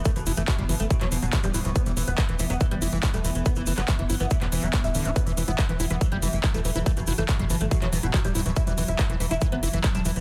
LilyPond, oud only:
\new Staff \with { instrumentName = "Oud" } { \clef bass \time 4/4 \key e \minor \tempo 4 = 141 a16 b,16 b,16 a16 b,16 b,16 b,16 a16 b,16 fis16 b,16 b,16 b,16 g16 b,16 b,16 | b16 e16 e16 b16 e16 e16 e16 b16 e16 g16 e16 e16 e16 a16 e16 e16 | b16 e16 e16 b16 e16 e16 e16 b16 e16 b16 e16 e16 e16 e'16 e16 e16 | b16 e16 e16 b16 e16 e16 e16 b16 e16 g16 e16 e16 e16 a16 e16 e16 |
a16 b,16 b,16 a16 b,16 b,16 b,16 a16 b,16 fis16 b,16 b,16 b,16 g16 b,16 b,16 | e'16 e16 e16 e'16 e16 e16 e16 e'16 e16 b16 e16 e16 e16 d'16 e16 e16 | }